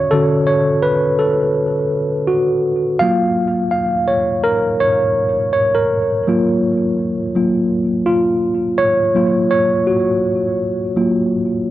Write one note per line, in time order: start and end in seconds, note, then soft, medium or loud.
0.00 0.12 D3 soft
0.00 0.13 C#4 soft
0.00 0.14 F#4 medium
0.00 0.47 C#5 loud
0.00 3.03 D5 loud
0.00 3.03 E5 loud
0.11 1.17 D3 medium
0.11 1.17 C#4 medium
0.11 1.17 F#4 medium
0.11 0.45 A4 loud
0.47 0.81 C#5 medium
0.83 1.17 B4 medium
1.19 2.31 A4 medium
2.27 3.03 F#4 medium
2.99 5.86 F#3 medium
2.99 5.87 A#3 soft
2.99 5.87 F4 medium
2.99 3.68 F5 loud
3.71 4.06 F5 medium
4.08 4.46 C#5 medium
4.44 4.82 A#4 medium
4.80 5.49 C#5 loud
5.53 5.74 C#5 medium
5.75 7.16 A#4 medium
6.27 6.78 F#3 medium
6.27 6.78 A#3 medium
6.27 6.78 F4 medium
7.35 7.68 F#3 medium
7.35 7.68 A#3 soft
7.35 7.68 F4 soft
8.06 8.75 F4 medium
8.78 9.47 C#5 loud
9.15 9.66 F#3 medium
9.15 9.67 A#3 medium
9.15 9.67 F4 medium
9.51 9.88 C#5 medium
9.87 11.71 F#4 medium
10.96 11.29 F#3 soft
10.96 11.29 A#3 soft
10.96 11.29 F4 soft